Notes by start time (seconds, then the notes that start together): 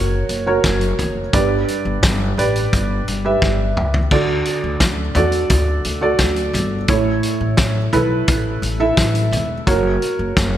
Already playing: F#1 F#4 A#4 C#5
0.29 F#1, closed hi-hat
0.46 F#4 A#4 C#5
0.64 F#1, kick, snare, closed hi-hat
0.81 closed hi-hat
0.99 F#1, closed hi-hat, floor tom
1.33 G1 G2 G4 B4 D5, kick, closed hi-hat
1.68 closed hi-hat
1.85 G1
2.03 G1, kick, snare, closed hi-hat
2.37 A1 G4 B4 D5, closed hi-hat
2.56 closed hi-hat
2.73 G1, kick, closed hi-hat
3.08 G1, closed hi-hat
3.25 G4 B4 E5
3.42 G1, kick, snare
3.77 C#2, mid tom
3.94 floor tom
4.11 D2 D3 F#4 A4 D5, kick, crash
4.45 closed hi-hat
4.64 D2
4.80 D2, kick, snare, closed hi-hat
5.15 E2 F#4 A4 D5, closed hi-hat, floor tom
5.32 closed hi-hat
5.50 D2, kick, closed hi-hat
5.85 D2, closed hi-hat
6.01 F#4 A4 D5
6.18 D2, kick, snare, closed hi-hat
6.36 closed hi-hat
6.53 G1, closed hi-hat, floor tom
6.88 A1 A2 E4 A4 C#5, kick, closed hi-hat
7.23 closed hi-hat
7.41 A1
7.57 A1, kick, snare, closed hi-hat
7.93 B1 E4 A4 B4, closed hi-hat, floor tom
8.28 A1, kick, closed hi-hat
8.62 A1, closed hi-hat
8.80 E4 A4 E5
8.97 A1, kick, snare, closed hi-hat
9.15 closed hi-hat
9.31 E1, closed hi-hat, floor tom
9.67 F#1 F#4 A#4 C#5, kick, closed hi-hat
10.02 closed hi-hat
10.19 F#1
10.37 F#1, kick, snare, closed hi-hat